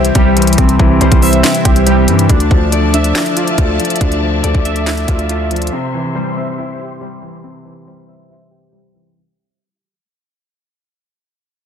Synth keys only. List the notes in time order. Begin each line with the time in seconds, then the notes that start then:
Already playing: C4 G4 C5 E5
0.15 G4
0.58 C4
1.01 C5
1.23 E5
1.44 C4
1.65 G4
1.87 G4
2.30 D4
2.72 D5
2.94 E5
3.15 D4
3.37 F4
3.58 F4
4.01 D4
4.44 D5
4.65 E5
4.86 D4
5.08 F4
5.29 F4
5.72 C4
6.16 C5
6.37 E5
6.58 C4
6.80 G4
7.01 G4
7.44 C4
7.87 C5
8.08 E5
8.29 C4
8.51 G4
8.72 G4